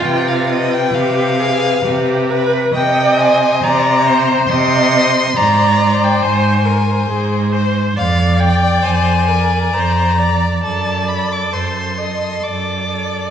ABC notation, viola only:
X:1
M:3/4
L:1/8
Q:1/4=67
K:Cm
V:1 name="Viola"
F2 G A G =B | e2 d c e2 | d2 c B A c | d2 c B c d |
d2 c e d2 |]